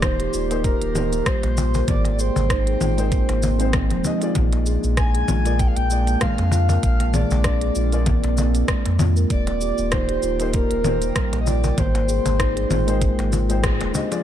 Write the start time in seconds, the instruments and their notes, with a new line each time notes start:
Already playing: sub bass D#1, ambient pad D#3 A#3 F4 G4
0.02 steel tongue drum D#4, soft synth lead C5, kick, cross-stick, closed hi-hat, low conga, cabasa
0.20 steel tongue drum G4, closed hi-hat
0.33 sub bass D#1, steel tongue drum F4, cabasa
0.50 felt piano A#3 D#4 G4 C5, steel tongue drum A#4, closed hi-hat, cabasa
0.64 steel tongue drum A#3, soft synth lead A#4, kick, closed hi-hat, cabasa
0.82 sub bass D#1, steel tongue drum A#3, closed hi-hat
0.93 felt piano A#3 D#4 G4, steel tongue drum G4, low conga, cabasa
0.97 felt piano C5
1.12 steel tongue drum A#3, closed hi-hat, cabasa
1.26 steel tongue drum G3, soft synth lead C5, kick, cross-stick, closed hi-hat, cabasa
1.43 sub bass A#1, steel tongue drum A#3, cajon slap, closed hi-hat
1.57 steel tongue drum F4, cajon bass, cabasa
1.74 steel tongue drum A#4, cajon bass, cabasa
1.87 sub bass G#1, ambient pad G#3 C4 G5, steel tongue drum A#3, soft synth lead D5, kick, closed hi-hat, low conga, cabasa
2.05 steel tongue drum A#3, cajon slap, closed hi-hat
2.13 soft synth lead D5
2.19 steel tongue drum G#4, soft synth lead C5, cabasa
2.36 sub bass G#1, steel tongue drum A#3, cajon bass, cabasa
2.50 steel tongue drum D#4, kick, cross-stick, closed hi-hat, cabasa
2.67 steel tongue drum G#4, closed hi-hat
2.81 sub bass G#1, steel tongue drum F4, low conga, cabasa
2.97 felt piano G#3 D#4 C5 G5, steel tongue drum A#4, closed hi-hat, cabasa
3.12 steel tongue drum A#3, kick, closed hi-hat, cabasa
3.29 sub bass G#1, steel tongue drum A#3, cross-stick, cajon slap, closed hi-hat
3.43 steel tongue drum A#3, cajon bass, cabasa
3.59 felt piano G#3 D#4 C5 G5, steel tongue drum C4, closed hi-hat, cabasa
3.73 steel tongue drum A#3, kick, cross-stick, closed hi-hat, low conga, cabasa
3.90 sub bass D#1, steel tongue drum F3, cajon slap, closed hi-hat
4.04 felt piano G#3 D#4 G4 D#5, steel tongue drum D#4, cajon bass, cabasa
4.19 felt piano A#3 F4 G#4 D5, steel tongue drum F4, closed hi-hat, cabasa
4.35 sub bass A#1, ambient pad A#3 D4, steel tongue drum A#3, kick, closed hi-hat, low conga, cabasa
4.53 steel tongue drum A#3, cajon slap, closed hi-hat
4.66 steel tongue drum G#4, cabasa
4.84 sub bass A#1, steel tongue drum A#3, cabasa
4.97 soft synth lead G#5, kick, cross-stick, closed hi-hat, cabasa
5.15 steel tongue drum G#4, closed hi-hat
5.28 sub bass A#1, steel tongue drum F4, low conga, cabasa
5.44 felt piano A#3 F4 G#4 D5, steel tongue drum A#4, closed hi-hat, cabasa
5.59 steel tongue drum A#3, soft synth lead G5, kick, closed hi-hat, cabasa
5.68 soft synth lead F5
5.76 sub bass A#1, steel tongue drum A#3, soft synth lead G5, closed hi-hat
5.88 felt piano A#3 F4 G#4, steel tongue drum A#3, cabasa
5.92 felt piano D5
6.07 steel tongue drum A#3, closed hi-hat, cabasa
6.21 steel tongue drum G#3, soft synth lead F5, kick, cross-stick, closed hi-hat, low conga, cabasa
6.38 sub bass F2, steel tongue drum A#3, cajon slap, closed hi-hat
6.52 steel tongue drum F4, cajon bass, cabasa
6.69 steel tongue drum A#4, cajon bass, cabasa
6.83 sub bass A#1, steel tongue drum A#3, ambient pad C4, soft synth lead F5, kick, closed hi-hat, cabasa
7.00 steel tongue drum A#3, cajon slap, closed hi-hat
7.13 steel tongue drum G#4, soft synth lead D5, low conga, cabasa
7.31 sub bass A#1, steel tongue drum A#3, cajon bass, cabasa
7.44 steel tongue drum D4, kick, cross-stick, closed hi-hat, cabasa
7.61 steel tongue drum G#4, closed hi-hat
7.75 sub bass A#1, steel tongue drum F4, cabasa
7.92 felt piano A#3 F4 G#4 D5, steel tongue drum A#4, closed hi-hat, cabasa
8.06 steel tongue drum A#3, kick, closed hi-hat, low conga, cabasa
8.24 sub bass A#1, steel tongue drum A#3, cajon slap, closed hi-hat
8.35 felt piano A#3 F4 G#4, steel tongue drum A#3, cajon bass, cabasa
8.39 felt piano D5
8.55 steel tongue drum A#3, closed hi-hat, cabasa
8.68 steel tongue drum G#3, kick, cross-stick, closed hi-hat, cabasa
8.86 sub bass F2, steel tongue drum A#3, cajon slap, closed hi-hat
8.99 steel tongue drum F4, cajon bass, low conga, cabasa
9.17 steel tongue drum A#4, cabasa
9.30 sub bass D#1, ambient pad D#3 A#3 F4 G5, steel tongue drum A#3, soft synth lead D5, kick, closed hi-hat, cabasa
9.47 steel tongue drum A#3, cajon slap, closed hi-hat
9.61 steel tongue drum G4, cabasa
9.78 sub bass D#1, steel tongue drum A#3, cabasa
9.92 steel tongue drum D#4, soft synth lead C5, kick, cross-stick, closed hi-hat, low conga, cabasa
10.09 steel tongue drum G4, closed hi-hat
10.23 sub bass D#1, steel tongue drum F4, cabasa
10.39 felt piano A#3 D#4 G4 C5, steel tongue drum A#4, closed hi-hat, cabasa
10.53 steel tongue drum A#3, soft synth lead A#4, kick, closed hi-hat, cabasa
10.71 sub bass D#1, steel tongue drum A#3, closed hi-hat
10.83 felt piano A#3 D#4 G4, steel tongue drum A#3, low conga, cabasa
10.87 felt piano C5
11.02 steel tongue drum A#3, closed hi-hat, cabasa
11.16 steel tongue drum G3, kick, cross-stick, closed hi-hat, cabasa
11.33 sub bass A#1, steel tongue drum A#3, cajon slap, closed hi-hat
11.41 soft synth lead D#5
11.47 steel tongue drum F4, soft synth lead D5, cajon bass, cabasa
11.64 steel tongue drum A#4, cajon bass, cabasa
11.77 sub bass G#1, ambient pad G#3 C4, steel tongue drum A#3, soft synth lead C5, kick, closed hi-hat, low conga, cabasa
11.95 steel tongue drum A#3, cajon slap, closed hi-hat
12.08 steel tongue drum G#4, cabasa
12.25 sub bass G#1, steel tongue drum A#3, cajon bass, cajon slap, closed hi-hat, cabasa
12.39 steel tongue drum D#4, kick, cross-stick, closed hi-hat, cabasa
12.56 steel tongue drum G#4, closed hi-hat
12.70 sub bass G#1, steel tongue drum F4, low conga, cabasa
12.87 felt piano G#3 D#4 C5 G5, steel tongue drum A#4, closed hi-hat, cabasa
13.01 steel tongue drum A#3, kick, closed hi-hat, cabasa
13.18 sub bass G#1, steel tongue drum A#3, cross-stick, cajon slap, closed hi-hat
13.32 steel tongue drum F4, cajon bass, cabasa
13.49 felt piano G#3 D#4 C5 G5, steel tongue drum F4, closed hi-hat, cabasa
13.63 steel tongue drum G#4, kick, cross-stick, closed hi-hat, low conga, cabasa
13.80 sub bass D#1, steel tongue drum A#3, cajon slap, closed hi-hat
13.93 felt piano G#3 D#4 G4 D#5, steel tongue drum D4, cajon bass, cabasa
14.10 steel tongue drum F3, felt piano A#3 F4 G#4 D5, cajon slap, closed hi-hat, cabasa